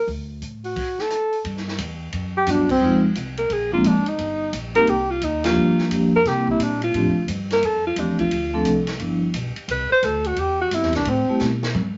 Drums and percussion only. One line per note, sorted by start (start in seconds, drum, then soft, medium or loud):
0.08 kick soft
0.08 open hi-hat soft
0.42 closed hi-hat soft
0.64 open hi-hat soft
0.76 kick medium
0.76 open hi-hat soft
0.76 crash medium
0.98 snare soft
1.10 cross-stick medium
1.10 closed hi-hat soft
1.33 open hi-hat soft
1.45 kick soft
1.45 ride soft
1.57 snare soft
1.68 snare soft
1.78 kick soft
1.78 hi-hat pedal medium
1.78 ride medium
2.12 kick soft
2.12 ride medium
2.46 kick soft
2.46 hi-hat pedal medium
2.46 ride medium
2.69 kick medium
2.69 crash medium
3.15 kick soft
3.15 hi-hat pedal soft
3.15 ride medium
3.37 ride soft
3.50 kick soft
3.50 ride medium
3.72 kick soft
3.84 kick soft
3.84 hi-hat pedal medium
3.84 ride medium
4.06 ride soft
4.18 kick soft
4.18 ride medium
4.53 kick soft
4.53 hi-hat pedal medium
4.53 ride medium
4.75 ride soft
4.87 kick soft
4.87 ride medium
5.21 kick soft
5.21 hi-hat pedal medium
5.21 ride medium
5.44 snare medium
5.44 ride medium
5.78 snare soft
5.91 kick soft
5.91 hi-hat pedal medium
5.91 ride medium
6.25 kick soft
6.25 snare soft
6.25 ride soft
6.47 kick medium
6.60 kick soft
6.60 hi-hat pedal medium
6.60 ride medium
6.82 ride soft
6.94 kick soft
6.94 ride medium
7.28 kick soft
7.28 hi-hat pedal medium
7.28 ride medium
7.50 snare soft
7.50 ride soft
7.63 kick soft
7.63 ride medium
7.96 kick soft
7.96 hi-hat pedal medium
7.96 ride medium
8.19 kick soft
8.19 ride soft
8.31 kick soft
8.31 ride medium
8.65 kick soft
8.65 hi-hat pedal medium
8.65 ride medium
8.87 snare soft
8.87 ride soft
9.00 kick soft
9.00 ride medium
9.34 kick soft
9.34 hi-hat pedal medium
9.34 ride medium
9.56 ride soft
9.68 kick soft
9.68 ride medium
10.03 kick soft
10.03 hi-hat pedal soft
10.03 ride medium
10.24 ride soft
10.36 kick soft
10.36 ride medium
10.71 kick soft
10.71 hi-hat pedal medium
10.71 ride medium
10.82 snare soft
10.93 snare soft
10.93 ride soft
11.05 kick soft
11.05 ride medium
11.39 snare soft
11.39 hi-hat pedal medium
11.63 snare medium
11.74 high tom medium